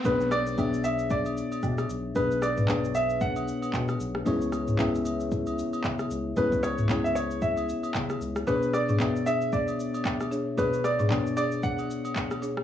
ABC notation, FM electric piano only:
X:1
M:4/4
L:1/8
Q:"Swing 16ths" 1/4=114
K:Bdor
V:1 name="FM electric piano"
[B,,B,DGc]2 [B,,B,DGe]3 z3 | [B,,B,DGB]2 [B,,B,DGc]3 z3 | [C,B,EGc]2 [C,B,EGe]3 z3 | [C,B,EGc]2 [C,B,EGc]3 z3 |
[B,,B,DG=c^c]2 [B,,B,DGe]3 z3 | [B,,B,DGc]2 [B,,B,DGc]3 z3 |]